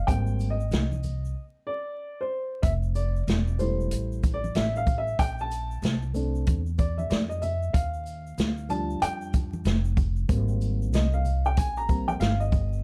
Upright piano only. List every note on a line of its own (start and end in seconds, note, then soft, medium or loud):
0.07 0.53 G3 medium
0.07 0.53 A#3 soft
0.07 0.53 C4 medium
0.07 0.51 G5 medium
0.50 1.42 D#5 medium
1.67 2.22 D5 medium
2.21 2.65 C5 medium
2.62 2.70 E5 loud
2.95 3.61 D5 medium
3.58 5.14 G3 soft
3.58 5.14 A3 soft
3.58 5.15 E4 medium
3.58 4.36 C5 medium
4.34 4.53 D5 medium
4.56 4.77 E5 loud
4.77 4.98 F5 loud
4.98 5.20 E5 loud
5.19 5.39 G5 loud
5.41 6.00 A5 loud
6.13 6.59 A3 medium
6.13 6.60 C4 soft
6.13 6.60 D4 medium
6.78 6.99 D5 medium
6.98 7.10 E5 medium
7.10 7.15 D5 medium
7.29 7.41 D#5 medium
7.42 7.75 E5 medium
7.73 8.72 F5 loud
8.69 9.61 F3 medium
8.69 9.61 G3 medium
8.69 9.61 D4 medium
8.69 9.03 A5 loud
9.02 9.31 G5 loud
10.28 11.21 G3 medium
10.28 11.21 A#3 medium
10.28 11.21 C4 medium
10.94 11.14 D#5 medium
11.14 11.46 F5 medium
11.46 11.58 G5 medium
11.58 11.78 G#5 loud
11.77 12.10 A#5 loud
11.88 12.17 G3 medium
11.88 12.18 A#3 soft
11.88 12.18 C4 medium
12.08 12.13 G5 medium
12.20 12.41 F5 loud
12.40 12.81 D#5 medium